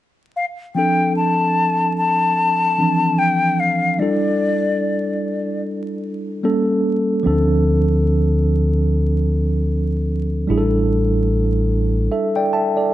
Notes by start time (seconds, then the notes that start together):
0.36 F5
0.75 F3 C4 D4 A4 G5
1.17 A5
1.97 A5
2.78 E3 F3 C4 D4
3.19 G5
3.60 F5
3.99 G3 D4 E4 A4 D5
6.43 G3 A#3 C#4 A4
7.23 D2 F3 C4 D4 A4
10.47 A1 G3 D4 E4 G#4
10.58 A4
12.12 A4 E5
12.36 D5 G5
12.53 E5 A5
12.77 A4 D5